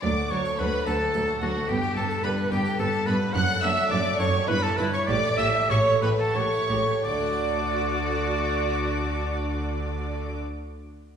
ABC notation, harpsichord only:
X:1
M:3/4
L:1/16
Q:1/4=99
K:D
V:1 name="Harpsichord"
z F D A F D A G A F D A, | z G D B G D B A B G D B, | z A D A D A, A G z G E B | z E A, G E A, G F z E A, G |
[D,A,DFd]12- | [D,A,DFd]12 |]
V:2 name="Harpsichord" clef=bass
D,,2 D,,2 D,,2 D,,2 D,,2 D,,2 | G,,2 G,,2 G,,2 G,,2 G,,2 G,,2 | F,,2 F,,2 F,,2 F,,2 G,,2 G,,2 | A,,2 A,,2 A,,2 A,,2 A,,2 A,,2 |
z12 | z12 |]